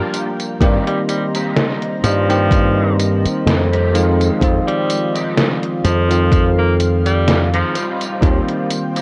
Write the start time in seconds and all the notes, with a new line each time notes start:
Already playing: F3 G3 A#3 D4 F4 G4 A#4 G5
0.14 closed hi-hat, tambourine
0.40 closed hi-hat, tambourine
0.60 G2 D#3 G3 A#3 C4 D#4 G4 C5 A#5, kick, closed hi-hat, tambourine
0.87 G3, closed hi-hat
1.08 G3, closed hi-hat, tambourine
1.34 A#3 C4 D#4 G4, closed hi-hat, tambourine
1.56 snare, closed hi-hat, tambourine
1.82 muted clean electric guitar stroke, closed hi-hat
2.04 G2 F3, closed hi-hat, tambourine
2.29 D#3 G3 A#3 C4 G4, closed hi-hat, tambourine
2.51 muted clean electric guitar stroke, kick, closed hi-hat, tambourine
2.77 muted clean electric guitar stroke
2.99 closed hi-hat, tambourine
3.25 muted slap bass stroke, closed hi-hat, tambourine
3.46 F2, snare, closed hi-hat, tambourine
3.72 A#3 C4 D#4 G4, closed hi-hat
3.93 D#3 F3 G#3 C4 D#4 F4 D#5, closed hi-hat, tambourine
4.21 closed hi-hat, tambourine
4.40 F2 D#3 F3 C4 F4, kick, closed hi-hat, tambourine
4.68 G3, closed hi-hat
4.90 closed hi-hat, tambourine
5.15 G#3 C4 D#4 G4, closed hi-hat, tambourine
5.37 snare, closed hi-hat, tambourine
5.62 muted clean electric guitar stroke, closed hi-hat
5.84 F2 F3 F5, closed hi-hat, tambourine
6.09 D#3 F3 C4 F4, closed hi-hat, tambourine
6.32 muted clean electric guitar stroke, kick, closed hi-hat, tambourine
6.58 A#3, muted clean electric guitar stroke
6.80 closed hi-hat, tambourine
7.06 G3, closed hi-hat, tambourine
7.28 snare, closed hi-hat, tambourine
7.53 F3 G#3 C4 D#4 F4, closed hi-hat
7.75 G3 C4 D#4 F4 C5 G5, closed hi-hat, tambourine
8.01 closed hi-hat, tambourine
8.21 D#2 D#3 G3 A#3 C4 F4, kick, closed hi-hat, tambourine
8.49 closed hi-hat
8.71 closed hi-hat, tambourine
8.96 G3 C4 D#4 G4, closed hi-hat, tambourine